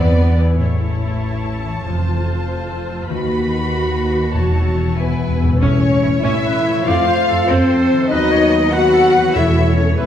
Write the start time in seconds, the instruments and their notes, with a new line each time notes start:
Already playing: double bass section E2, harp E2 E4, cello section B3, viola section B3, violin section B4 D5
0.18 harp D4
0.39 harp E4 G#4
0.60 double bass section A1, timpani A2, cello section A2, harp A2, viola section E4, violin section C#5 A5
0.81 harp C#4
1.02 harp E4
1.23 harp A4
1.44 harp E4
1.65 harp E3
1.85 double bass section F1, cello section F2, harp F3, viola section F4, violin section C5
2.07 harp F4
2.28 harp A4
2.48 harp C5
2.69 harp A4
2.90 harp C4
3.09 cello section D#2, double bass section D#2, harp D#3, viola section F#4, violin section B4 B5
3.31 harp B3
3.51 harp F#4
3.71 harp B4
3.92 harp F#4
4.13 harp D#4
4.34 double bass section E1, cello section E2, timpani E2, harp E3, violin section C#5 A5
4.55 harp E4
4.76 harp E4 A4
4.97 timpani E2, harp E3, cello section B3, french horn section B3, viola section E4, violin section B4 G#5, flute B4
5.06 timpani E2
5.13 timpani E2
5.19 timpani E2, harp E4
5.29 timpani E2
5.36 timpani E2
5.40 timpani E2, harp A2 E4 G#4
5.48 timpani E2, harp C#4
5.53 harp E4
5.57 viola section C#4 C#5, harp A4, violin section C#5, flute C#5
5.61 double bass section A1, trombone section E3 A3, cello section C#4, french horn section C#4
6.02 double bass section A1, viola section E4
6.23 double bass section A1, trombone section E3 A3, viola section C#4, cello section E4, french horn section E4, oboe C#5, violin section E5, flute E5
6.46 oboe B4
6.67 harp F3, oboe C#5
6.73 harp C4
6.78 harp F4
6.82 french horn section F4, cello section F4, harp A4
6.86 double bass section F2, trombone section F3 A3, viola section C4 C5, oboe D5, violin section F5, flute F5
7.07 oboe C5
7.28 double bass section F2, viola section F4, oboe A4
7.47 double bass section F2, trombone section F3 A3, french horn section C4, viola section C4, cello section C4, violin section C5, flute C5
7.93 harp D#3
7.98 harp B3
8.02 harp F#4
8.06 double bass section D#2, cello section D#4, harp B4, violin section D#5
8.11 trombone section F#3 B3, french horn section D#4, viola section F#4 B4, oboe B4, flute D#5, violin section D#5
8.32 oboe C#5
8.52 oboe D#5
8.72 trombone section F#3 B3, cello section F#4, french horn section F#4, viola section F#4 B4, oboe B4, flute F#5, violin section F#5
8.93 oboe A4
9.14 oboe B4
9.18 harp E3
9.22 harp C#4
9.27 harp E4
9.31 double bass section E2, cello section E4, harp A4, oboe C#5, viola section C#5, violin section E5, flute E5
9.35 timpani E2, trombone section E3 A3, french horn section E4, viola section A4, violin section E5
9.76 cello section C#4, french horn section C#4, flute C#5, violin section C#5
9.80 harp E3
9.85 harp B3
9.89 harp E4
9.94 double bass section E2, cello section B3, harp G#4, oboe B4, violin section B4, flute B4
9.98 trombone section E3 G#3, french horn section B3, viola section G#4 E5, violin section B4